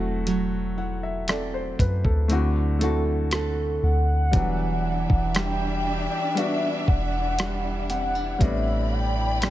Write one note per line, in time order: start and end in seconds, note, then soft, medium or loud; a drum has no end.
0.00 1.75 E1 medium
0.00 0.26 F#3 medium
0.00 1.53 A3 medium
0.00 1.50 C4 medium
0.00 1.51 E4 medium
0.00 0.77 F#4 medium
0.00 1.52 F#4 medium
0.00 1.29 A4 medium
0.27 3.35 F#3 medium
0.27 closed hi-hat medium
0.78 1.28 E4 medium
0.78 1.02 F#5 medium
1.03 1.27 E5 medium
1.28 2.40 C4 medium
1.28 2.41 E4 medium
1.28 2.41 A4 medium
1.28 1.53 D5 medium
1.28 cross-stick loud
1.28 closed hi-hat medium
1.54 1.78 C5 medium
1.79 2.04 F#2 medium
1.79 2.04 B4 medium
1.79 kick medium
1.79 closed hi-hat medium
2.05 3.79 D2 loud
2.05 2.53 A4 medium
2.05 kick medium
2.28 4.33 D3 medium
2.28 2.73 A3 medium
2.28 2.74 C4 medium
2.28 2.74 E4 medium
2.28 closed hi-hat medium
2.33 2.75 F#4 medium
2.79 4.11 A3 medium
2.79 4.12 C4 medium
2.79 4.12 E4 medium
2.79 3.32 A4 medium
2.79 closed hi-hat medium
2.83 4.13 F#4 medium
3.31 4.44 C4 medium
3.31 5.38 F#4 medium
3.31 4.44 A4 medium
3.31 cross-stick loud
3.31 closed hi-hat medium
3.83 4.32 D2 loud
3.83 5.37 F#5 loud
4.31 5.07 E1 loud
4.31 8.40 E3 medium
4.31 6.07 G3 medium
4.31 6.08 B3 medium
4.31 8.36 D4 medium
4.31 6.09 D4 medium
4.31 9.50 E4 medium
4.31 8.36 D5 medium
4.31 8.36 E5 medium
4.31 kick loud
4.31 closed hi-hat medium
4.36 6.09 F#3 medium
5.10 6.08 E1 loud
5.10 kick medium
5.35 7.39 G3 medium
5.35 7.89 D4 medium
5.35 6.39 G5 medium
5.35 cross-stick loud
5.35 closed hi-hat medium
6.35 8.11 G3 medium
6.35 8.11 B3 medium
6.35 8.12 D4 medium
6.35 6.88 E5 medium
6.35 closed hi-hat medium
6.39 8.13 F#4 medium
6.88 8.36 E1 loud
6.88 7.86 F#5 loud
6.88 kick medium
7.39 9.42 G3 medium
7.39 cross-stick loud
7.39 closed hi-hat medium
7.90 8.15 C4 medium
7.90 8.42 F#5 medium
7.90 closed hi-hat medium
8.15 8.51 D4 medium
8.38 9.50 A1 loud
8.38 9.50 A2 medium
8.38 9.50 C3 medium
8.38 9.50 G3 medium
8.38 9.50 B3 medium
8.38 9.50 C4 medium
8.38 9.50 D5 medium
8.38 8.93 E5 medium
8.38 9.50 B5 medium
8.38 kick loud
8.38 closed hi-hat medium
8.43 9.50 D4 medium
8.92 9.50 G5 loud
9.42 9.50 G3 medium
9.42 9.50 C4 medium
9.42 9.50 D4 medium
9.42 cross-stick loud
9.42 closed hi-hat medium